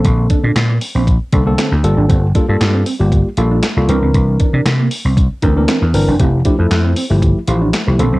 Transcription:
<<
  \new Staff \with { instrumentName = "Clean electric guitar" } { \time 4/4 \key f \major \tempo 4 = 117 r8 d'16 d'16 r16 bes16 r16 c'16 r8 d'16 bes16 c'16 r8 d'16 | c'16 r16 d'16 r8 c'16 c'16 r8. f'16 d'16 r8 c'16 c'16 | r8 d'16 d'16 r16 bes16 r16 c'16 r8 d'16 bes16 c'16 r8 d'16 | c'16 r16 d'16 r8 c'16 c'16 r8. f'16 d'16 r8 c'16 c'16 | }
  \new Staff \with { instrumentName = "Tine electric piano" } { \time 4/4 \key f \major <d bes c' a'>4 r4. <d bes c' a'>16 <d bes c' a'>8 r16 <g bes f' a'>8~ | <g bes f' a'>16 r16 <g bes f' a'>16 <g bes f' a'>8. r16 <g bes f' g'>8 r16 <g bes f' a'>8 r16 <g bes f' a'>16 <e c' d' bes'>8~ | <e c' d' bes'>4 r4. <e c' d' bes'>16 <e c' d' bes'>8 r16 <e c' d' bes'>16 r16 | <f a e' g'>16 r16 <f a e' g'>16 <f a e' a'>8. r16 <f a e' g'>8 r16 <f a e' g'>8 r16 <f a e' g'>16 <d bes c' a'>8 | }
  \new Staff \with { instrumentName = "Slap bass" } { \clef bass \time 4/4 \key f \major bes,,8 r16 bes,16 bes,8 r16 bes,,8 r16 c,8 r16 d,16 g,,16 aes,,16 | g,,8 r16 g,16 g,8 r16 g,,8 r16 bes,,8 r16 c,16 c,16 cis,16 | c,8 r16 c16 c8 r16 c,8 r16 d,8 r16 e,16 g,,16 fis,,16 | f,,8 r16 f,16 f,8 r16 g,,8 r16 a,,8 r16 c,16 bes,,16 b,,16 | }
  \new DrumStaff \with { instrumentName = "Drums" } \drummode { \time 4/4 <hh bd>8 <hh bd>8 <hc hh sn>8 hho8 <hh bd>8 <hh bd>8 <hc hh sn>8 hh8 | <hh bd>8 <hh bd>8 <hc hh sn>8 hho8 <hh bd>8 hh8 <hc hh sn>8 hh8 | <hh bd>8 <hh bd>8 <hc hh sn>8 hho8 <hh bd>8 <hh bd>8 <hc hh sn>8 hho8 | <hh bd>8 <hh bd>8 <hc hh sn>8 hho8 <hh bd>8 hh8 <hc hh sn>8 hh8 | }
>>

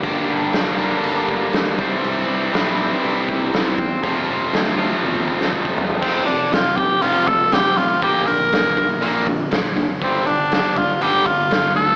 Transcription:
<<
  \new Staff \with { instrumentName = "Tenor saxophone" } { \time 4/4 \key f \major \tempo 4 = 120 r1 | r1 | r1 | c'8 d'8 f'8 g'8 f'8 a'8 g'8 f'8 |
g'8 bes'2 r4. | c'8 d'4 f'16. f'32 g'8 f'4 a'8 | }
  \new Staff \with { instrumentName = "Distorted electric guitar" } { \clef bass \time 4/4 \key f \major <g, d g bes d' g'>4. <g, d g bes d' g'>2 <c e g c' e'>8~ | <c e g c' e'>4 <c e g c' e'>2~ <c e g c' e'>8 r8 | <f, c f a c' f'>4. <f, c f a c' f'>2~ <f, c f a c' f'>8 | <f, c f>8 <f, c>8 <f, c>8 <f, c>8 <f, c f>8 <f, c>8 <f, c>8 <f, c>8 |
<bes, d bes>8 <bes, d>8 <bes, d>8 <bes, d>8 <bes, d bes>8 <bes, d>8 <bes, d>8 <bes, d>8 | <g, d g>8 <g, d>8 <g, d>8 <g, d>8 <g, d g>8 <g, d>8 <g, d>8 <g, d>8 | }
  \new Staff \with { instrumentName = "Picked electric bass" } { \clef bass \time 4/4 \key f \major g,,8 g,,8 f,,4 g,,8 g,,8 d,8 c,8 | c,8 c,8 bes,,4 c,8 c,8 c,8 e,8 | f,,8 f,,8 d,4 f,,8 f,,8 f,,8 c,8 | f,,8 f,,8 f,,8 f,,8 f,,4 f,,8 a,,8 |
bes,,8 bes,,8 g,,8 bes,,8 bes,,8 f,8 bes,,8 fis,,8 | g,,8 g,,8 g,,8 g,,8 g,,4 g,,8 d,8 | }
  \new DrumStaff \with { instrumentName = "Drums" } \drummode { \time 4/4 <hho bd>4 <hho sn>4 hho8 bd8 <hho sn>8 bd8 | hho4 <hho sn>4 hho8 bd8 <hho sn>8 bd8 | <hho bd>4 <hho sn>4 tommh16 bd16 bd16 sn16 bd16 bd16 tomfh16 tomfh16 | <cymc bd>8 hho8 <hho sn>8 <hho bd>8 hho8 <hho bd>8 <hho sn>8 hho8 |
<hho bd>8 hho8 <hho sn>8 <hho bd>8 hho8 <hho bd>8 <hho sn>8 hho8 | <hho bd>8 hho8 <hho sn>8 <hho bd>8 hho8 <hho bd>8 <hho sn>8 hho8 | }
>>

